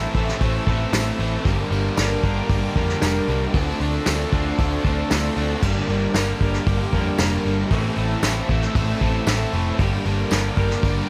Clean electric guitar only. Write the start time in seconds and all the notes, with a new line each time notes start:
Already playing: A3 C4 E4 A4
0.14 A3 C4 E4 A4
0.66 A3 C4 E4 A4
0.93 A3 C4 E4 A4
1.45 G2 D3 G3 A#3 D4 A#4
1.71 G3 A#3 D4 A#4
1.97 G3 A#3 D4 A#4
2.24 G3 A#3 D4 A#4
2.76 G3 A#3 D4 A#4
3.01 G3 A#3 D4 A#4
3.54 D3 F3 C4 D4 A4
3.80 C4 D4 A4
4.05 F3 C4 D4 A4
4.31 C4 D4 A4
4.84 C4 D4 A4
5.09 F3 C4 D4 A4
5.62 G2 D3 G3 A#3 D4 A#4
5.88 G3 A#3 D4 A#4
6.14 G3 A#3 D4 A#4
6.40 G3 A#3 D4 A#4
6.92 G3 A#3 D4 A#4
7.18 G3 A#3 D4 A#4
7.70 A2 E3 A3 C4 E4 A4
7.96 A3 C4 E4 A4
8.22 A3 C4 E4 A4
8.49 A3 C4 E4 A4
9.00 A3 C4 E4 A4
9.27 A3 C4 E4 A4
9.79 G2 D3 G3 A#3 D4 A#4
10.04 G3 A#3 D4 A#4
10.30 G3 A#3 D4 A#4
10.56 G3 A#3 D4 A#4